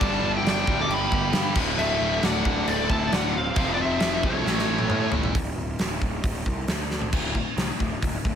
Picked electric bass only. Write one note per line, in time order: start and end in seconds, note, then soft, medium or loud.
0.01 0.20 G1 medium
0.22 0.41 G1 medium
0.43 0.63 G1 loud
0.67 0.87 D1 medium
0.87 1.08 G1 medium
1.12 1.31 G1 medium
1.33 1.53 G2 medium
1.55 1.75 D1 medium
1.78 1.97 D1 loud
2.00 2.20 D1 medium
2.23 2.42 D1 medium
2.45 2.64 D1 medium
2.67 2.87 D1 loud
2.89 3.09 D1 medium
3.12 3.50 D1 medium
3.56 3.76 F1 medium
3.80 3.98 F1 medium
4.01 4.20 F1 loud
4.23 4.42 C2 medium
4.45 4.64 A1 loud
4.69 4.87 A1 medium
4.91 5.10 A2 medium
5.14 5.32 G1 medium
5.35 5.55 D1 medium
5.56 5.76 D1 medium
5.80 5.99 D1 medium
6.02 6.21 D1 medium
6.24 6.44 D1 medium
6.46 6.66 C2 medium
6.68 7.08 D2 medium
7.13 7.40 D1 medium
7.56 7.70 C2 medium
7.80 7.94 D1 medium
8.03 8.16 D1 medium
8.25 8.35 D1 medium